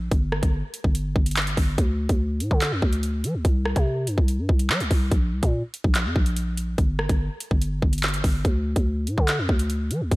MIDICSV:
0, 0, Header, 1, 3, 480
1, 0, Start_track
1, 0, Key_signature, -1, "minor"
1, 0, Tempo, 416667
1, 132, Time_signature, 4, 2, 24, 8
1, 11704, End_track
2, 0, Start_track
2, 0, Title_t, "808-style bass"
2, 0, Program_c, 0, 38
2, 132, Note_on_c, 0, 31, 113
2, 478, Note_off_c, 0, 31, 0
2, 492, Note_on_c, 0, 31, 101
2, 723, Note_off_c, 0, 31, 0
2, 971, Note_on_c, 0, 31, 99
2, 1318, Note_off_c, 0, 31, 0
2, 1332, Note_on_c, 0, 31, 103
2, 1793, Note_off_c, 0, 31, 0
2, 1812, Note_on_c, 0, 31, 104
2, 2043, Note_off_c, 0, 31, 0
2, 2052, Note_on_c, 0, 38, 112
2, 2398, Note_off_c, 0, 38, 0
2, 2412, Note_on_c, 0, 38, 105
2, 2772, Note_on_c, 0, 45, 101
2, 2789, Note_off_c, 0, 38, 0
2, 2884, Note_off_c, 0, 45, 0
2, 2891, Note_on_c, 0, 50, 105
2, 3132, Note_on_c, 0, 41, 99
2, 3149, Note_off_c, 0, 50, 0
2, 3246, Note_off_c, 0, 41, 0
2, 3252, Note_on_c, 0, 38, 107
2, 3734, Note_on_c, 0, 53, 98
2, 3751, Note_off_c, 0, 38, 0
2, 3853, Note_on_c, 0, 38, 98
2, 3870, Note_off_c, 0, 53, 0
2, 3967, Note_off_c, 0, 38, 0
2, 3972, Note_on_c, 0, 36, 112
2, 4318, Note_off_c, 0, 36, 0
2, 4332, Note_on_c, 0, 48, 106
2, 4693, Note_on_c, 0, 43, 100
2, 4710, Note_off_c, 0, 48, 0
2, 4807, Note_off_c, 0, 43, 0
2, 4812, Note_on_c, 0, 36, 110
2, 5053, Note_on_c, 0, 43, 100
2, 5071, Note_off_c, 0, 36, 0
2, 5167, Note_off_c, 0, 43, 0
2, 5173, Note_on_c, 0, 36, 110
2, 5412, Note_on_c, 0, 55, 100
2, 5430, Note_off_c, 0, 36, 0
2, 5533, Note_on_c, 0, 36, 95
2, 5551, Note_off_c, 0, 55, 0
2, 5647, Note_off_c, 0, 36, 0
2, 5653, Note_on_c, 0, 36, 106
2, 5883, Note_off_c, 0, 36, 0
2, 5892, Note_on_c, 0, 34, 107
2, 6133, Note_on_c, 0, 36, 102
2, 6150, Note_off_c, 0, 34, 0
2, 6247, Note_off_c, 0, 36, 0
2, 6253, Note_on_c, 0, 46, 104
2, 6483, Note_off_c, 0, 46, 0
2, 6732, Note_on_c, 0, 34, 104
2, 6974, Note_on_c, 0, 41, 99
2, 6991, Note_off_c, 0, 34, 0
2, 7087, Note_off_c, 0, 41, 0
2, 7093, Note_on_c, 0, 34, 103
2, 7784, Note_off_c, 0, 34, 0
2, 7813, Note_on_c, 0, 31, 106
2, 8158, Note_off_c, 0, 31, 0
2, 8172, Note_on_c, 0, 31, 102
2, 8403, Note_off_c, 0, 31, 0
2, 8652, Note_on_c, 0, 31, 102
2, 8998, Note_off_c, 0, 31, 0
2, 9013, Note_on_c, 0, 31, 108
2, 9474, Note_off_c, 0, 31, 0
2, 9492, Note_on_c, 0, 31, 103
2, 9723, Note_off_c, 0, 31, 0
2, 9733, Note_on_c, 0, 38, 114
2, 10078, Note_off_c, 0, 38, 0
2, 10093, Note_on_c, 0, 38, 105
2, 10454, Note_on_c, 0, 45, 98
2, 10471, Note_off_c, 0, 38, 0
2, 10564, Note_off_c, 0, 45, 0
2, 10571, Note_on_c, 0, 50, 107
2, 10813, Note_on_c, 0, 41, 99
2, 10830, Note_off_c, 0, 50, 0
2, 10927, Note_off_c, 0, 41, 0
2, 10933, Note_on_c, 0, 38, 107
2, 11413, Note_on_c, 0, 53, 100
2, 11430, Note_off_c, 0, 38, 0
2, 11533, Note_on_c, 0, 38, 101
2, 11551, Note_off_c, 0, 53, 0
2, 11647, Note_off_c, 0, 38, 0
2, 11652, Note_on_c, 0, 36, 112
2, 11704, Note_off_c, 0, 36, 0
2, 11704, End_track
3, 0, Start_track
3, 0, Title_t, "Drums"
3, 132, Note_on_c, 9, 36, 118
3, 133, Note_on_c, 9, 42, 65
3, 247, Note_off_c, 9, 36, 0
3, 248, Note_off_c, 9, 42, 0
3, 371, Note_on_c, 9, 37, 103
3, 487, Note_off_c, 9, 37, 0
3, 492, Note_on_c, 9, 36, 97
3, 492, Note_on_c, 9, 42, 70
3, 607, Note_off_c, 9, 36, 0
3, 607, Note_off_c, 9, 42, 0
3, 849, Note_on_c, 9, 42, 82
3, 965, Note_off_c, 9, 42, 0
3, 971, Note_on_c, 9, 36, 93
3, 1086, Note_off_c, 9, 36, 0
3, 1093, Note_on_c, 9, 42, 84
3, 1209, Note_off_c, 9, 42, 0
3, 1333, Note_on_c, 9, 36, 104
3, 1448, Note_off_c, 9, 36, 0
3, 1453, Note_on_c, 9, 42, 82
3, 1512, Note_off_c, 9, 42, 0
3, 1512, Note_on_c, 9, 42, 70
3, 1572, Note_off_c, 9, 42, 0
3, 1572, Note_on_c, 9, 39, 120
3, 1572, Note_on_c, 9, 42, 60
3, 1632, Note_off_c, 9, 42, 0
3, 1632, Note_on_c, 9, 42, 47
3, 1687, Note_off_c, 9, 39, 0
3, 1694, Note_off_c, 9, 42, 0
3, 1694, Note_on_c, 9, 42, 66
3, 1809, Note_off_c, 9, 42, 0
3, 1812, Note_on_c, 9, 36, 94
3, 1813, Note_on_c, 9, 46, 56
3, 1927, Note_off_c, 9, 36, 0
3, 1928, Note_off_c, 9, 46, 0
3, 2052, Note_on_c, 9, 36, 110
3, 2052, Note_on_c, 9, 42, 63
3, 2167, Note_off_c, 9, 36, 0
3, 2167, Note_off_c, 9, 42, 0
3, 2411, Note_on_c, 9, 42, 69
3, 2412, Note_on_c, 9, 36, 97
3, 2526, Note_off_c, 9, 42, 0
3, 2527, Note_off_c, 9, 36, 0
3, 2769, Note_on_c, 9, 42, 82
3, 2884, Note_off_c, 9, 42, 0
3, 2891, Note_on_c, 9, 36, 100
3, 3006, Note_off_c, 9, 36, 0
3, 3011, Note_on_c, 9, 39, 112
3, 3012, Note_on_c, 9, 42, 84
3, 3126, Note_off_c, 9, 39, 0
3, 3127, Note_off_c, 9, 42, 0
3, 3252, Note_on_c, 9, 36, 101
3, 3368, Note_off_c, 9, 36, 0
3, 3371, Note_on_c, 9, 42, 78
3, 3486, Note_off_c, 9, 42, 0
3, 3491, Note_on_c, 9, 42, 88
3, 3607, Note_off_c, 9, 42, 0
3, 3733, Note_on_c, 9, 42, 82
3, 3848, Note_off_c, 9, 42, 0
3, 3972, Note_on_c, 9, 36, 113
3, 3972, Note_on_c, 9, 42, 65
3, 4087, Note_off_c, 9, 36, 0
3, 4087, Note_off_c, 9, 42, 0
3, 4211, Note_on_c, 9, 37, 101
3, 4326, Note_off_c, 9, 37, 0
3, 4332, Note_on_c, 9, 36, 97
3, 4332, Note_on_c, 9, 42, 69
3, 4447, Note_off_c, 9, 36, 0
3, 4447, Note_off_c, 9, 42, 0
3, 4690, Note_on_c, 9, 42, 81
3, 4805, Note_off_c, 9, 42, 0
3, 4812, Note_on_c, 9, 36, 96
3, 4927, Note_off_c, 9, 36, 0
3, 4933, Note_on_c, 9, 42, 85
3, 5048, Note_off_c, 9, 42, 0
3, 5173, Note_on_c, 9, 36, 100
3, 5288, Note_off_c, 9, 36, 0
3, 5292, Note_on_c, 9, 42, 78
3, 5407, Note_off_c, 9, 42, 0
3, 5413, Note_on_c, 9, 39, 115
3, 5528, Note_off_c, 9, 39, 0
3, 5534, Note_on_c, 9, 42, 66
3, 5650, Note_off_c, 9, 42, 0
3, 5653, Note_on_c, 9, 36, 96
3, 5653, Note_on_c, 9, 46, 59
3, 5768, Note_off_c, 9, 36, 0
3, 5768, Note_off_c, 9, 46, 0
3, 5893, Note_on_c, 9, 36, 112
3, 5893, Note_on_c, 9, 42, 66
3, 6008, Note_off_c, 9, 36, 0
3, 6008, Note_off_c, 9, 42, 0
3, 6252, Note_on_c, 9, 42, 69
3, 6253, Note_on_c, 9, 36, 97
3, 6367, Note_off_c, 9, 42, 0
3, 6368, Note_off_c, 9, 36, 0
3, 6610, Note_on_c, 9, 42, 83
3, 6725, Note_off_c, 9, 42, 0
3, 6731, Note_on_c, 9, 36, 97
3, 6847, Note_off_c, 9, 36, 0
3, 6852, Note_on_c, 9, 39, 115
3, 6853, Note_on_c, 9, 42, 85
3, 6967, Note_off_c, 9, 39, 0
3, 6968, Note_off_c, 9, 42, 0
3, 7093, Note_on_c, 9, 36, 100
3, 7208, Note_off_c, 9, 36, 0
3, 7211, Note_on_c, 9, 42, 80
3, 7327, Note_off_c, 9, 42, 0
3, 7332, Note_on_c, 9, 42, 89
3, 7447, Note_off_c, 9, 42, 0
3, 7574, Note_on_c, 9, 42, 80
3, 7689, Note_off_c, 9, 42, 0
3, 7812, Note_on_c, 9, 36, 114
3, 7813, Note_on_c, 9, 42, 66
3, 7928, Note_off_c, 9, 36, 0
3, 7928, Note_off_c, 9, 42, 0
3, 8052, Note_on_c, 9, 37, 99
3, 8167, Note_off_c, 9, 37, 0
3, 8172, Note_on_c, 9, 36, 100
3, 8172, Note_on_c, 9, 42, 70
3, 8287, Note_off_c, 9, 42, 0
3, 8288, Note_off_c, 9, 36, 0
3, 8530, Note_on_c, 9, 42, 83
3, 8645, Note_off_c, 9, 42, 0
3, 8651, Note_on_c, 9, 36, 97
3, 8767, Note_off_c, 9, 36, 0
3, 8773, Note_on_c, 9, 42, 86
3, 8888, Note_off_c, 9, 42, 0
3, 9013, Note_on_c, 9, 36, 102
3, 9128, Note_off_c, 9, 36, 0
3, 9133, Note_on_c, 9, 42, 83
3, 9192, Note_off_c, 9, 42, 0
3, 9192, Note_on_c, 9, 42, 72
3, 9252, Note_off_c, 9, 42, 0
3, 9252, Note_on_c, 9, 39, 116
3, 9252, Note_on_c, 9, 42, 59
3, 9312, Note_off_c, 9, 42, 0
3, 9312, Note_on_c, 9, 42, 47
3, 9367, Note_off_c, 9, 39, 0
3, 9374, Note_off_c, 9, 42, 0
3, 9374, Note_on_c, 9, 42, 64
3, 9489, Note_off_c, 9, 42, 0
3, 9493, Note_on_c, 9, 36, 92
3, 9494, Note_on_c, 9, 46, 58
3, 9608, Note_off_c, 9, 36, 0
3, 9609, Note_off_c, 9, 46, 0
3, 9733, Note_on_c, 9, 36, 115
3, 9733, Note_on_c, 9, 42, 64
3, 9848, Note_off_c, 9, 36, 0
3, 9848, Note_off_c, 9, 42, 0
3, 10092, Note_on_c, 9, 42, 70
3, 10093, Note_on_c, 9, 36, 95
3, 10208, Note_off_c, 9, 36, 0
3, 10208, Note_off_c, 9, 42, 0
3, 10449, Note_on_c, 9, 42, 80
3, 10565, Note_off_c, 9, 42, 0
3, 10571, Note_on_c, 9, 36, 95
3, 10687, Note_off_c, 9, 36, 0
3, 10692, Note_on_c, 9, 39, 112
3, 10692, Note_on_c, 9, 42, 83
3, 10807, Note_off_c, 9, 39, 0
3, 10808, Note_off_c, 9, 42, 0
3, 10933, Note_on_c, 9, 36, 104
3, 11048, Note_off_c, 9, 36, 0
3, 11051, Note_on_c, 9, 42, 78
3, 11167, Note_off_c, 9, 42, 0
3, 11171, Note_on_c, 9, 42, 84
3, 11286, Note_off_c, 9, 42, 0
3, 11413, Note_on_c, 9, 42, 80
3, 11528, Note_off_c, 9, 42, 0
3, 11652, Note_on_c, 9, 36, 118
3, 11652, Note_on_c, 9, 42, 65
3, 11704, Note_off_c, 9, 36, 0
3, 11704, Note_off_c, 9, 42, 0
3, 11704, End_track
0, 0, End_of_file